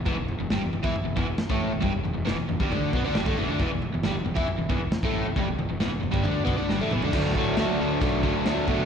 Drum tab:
CC |----------------|----------------|----------------|----------------|
SD |----o-------o---|----o-------o---|----o-------o---|----o-------o---|
T2 |----------------|----------------|----------------|--------------o-|
FT |o-o-o-o-o-o-o-o-|o-o-o-o-o-o-o-o-|o-o-o-o-o-o-o-o-|o-o-o-o-o-o----o|
BD |o------o--o--o--|o------o--o--o--|o------o--o--o--|o------o--o-----|

CC |x---x---x---x---|
SD |----o-------o---|
T2 |----------------|
FT |----------------|
BD |o-o-----o-o---o-|